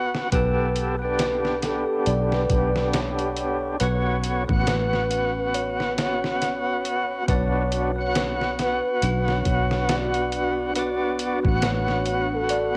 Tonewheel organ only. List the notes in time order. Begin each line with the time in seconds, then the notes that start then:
Already playing: B3 F#4 F#5
0.32 B3 G4 A4
0.99 B3 G4
1.05 D4
3.80 B3 F#4 C#5
4.48 B3 F#4
4.53 F#5
7.28 B3 D4 F#4
7.96 B3 F#4
8.01 F#5
10.76 B3 F#4 D5
11.43 B3 F#4
11.48 F#5